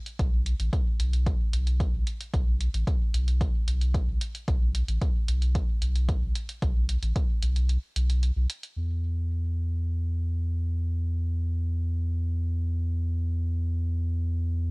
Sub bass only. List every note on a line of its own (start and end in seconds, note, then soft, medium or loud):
0.19 0.54 B1 loud
0.60 0.70 A1 medium
1.00 1.35 B1 loud
1.53 1.88 B1 loud
1.94 2.03 B1 loud
2.34 2.69 B1 loud
2.74 2.84 A1 medium
3.14 3.49 B1 loud
3.67 4.02 B1 loud
4.08 4.18 B1 loud
4.48 4.83 B1 loud
4.88 4.98 A1 medium
5.28 5.63 B1 loud
5.82 6.17 B1 loud
6.22 6.32 B1 loud
6.62 6.97 B1 loud
7.03 7.12 A1 medium
7.43 7.77 B1 loud
7.96 8.31 B1 loud
8.36 8.46 B1 loud
8.76 14.71 E2 medium